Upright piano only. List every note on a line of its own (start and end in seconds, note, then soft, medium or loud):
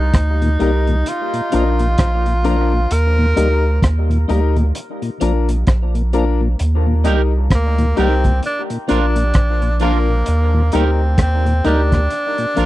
0.60 0.86 D#4 medium
0.60 0.86 G4 medium
0.60 0.87 A#4 loud
1.52 1.78 D4 medium
1.52 1.78 F4 medium
1.52 1.79 A#4 loud
2.44 2.70 D4 loud
2.44 2.70 F4 medium
2.44 2.71 A#4 loud
3.36 3.62 D#4 medium
3.36 3.62 G4 medium
3.36 3.63 A#4 loud
4.29 4.55 D#4 medium
4.29 4.55 G4 medium
4.29 4.55 A#4 loud
4.57 4.64 G4 soft
4.57 4.64 A#4 soft
5.21 5.47 D4 medium
5.21 5.47 F4 medium
5.21 5.47 A#4 medium
6.13 6.39 D4 loud
6.13 6.39 F4 medium
6.13 6.39 A#4 loud
7.04 7.30 D#4 medium
7.04 7.31 G4 medium
7.04 7.31 A#4 medium
7.96 8.22 D#4 medium
7.96 8.23 G4 medium
7.96 8.23 A#4 loud
8.88 9.14 D4 medium
8.88 9.15 F4 medium
8.88 9.15 A#4 medium
9.81 10.07 D4 loud
9.81 10.07 F4 medium
9.81 10.07 A#4 loud
10.73 10.99 D#4 medium
10.73 10.99 G4 medium
10.73 10.99 A#4 loud
11.64 11.90 D#4 medium
11.64 11.91 G4 medium
11.64 11.90 A#4 medium
11.92 12.00 G4 soft
11.92 11.99 A#4 soft
12.56 12.66 D4 medium
12.56 12.66 F4 medium
12.56 12.66 A#4 loud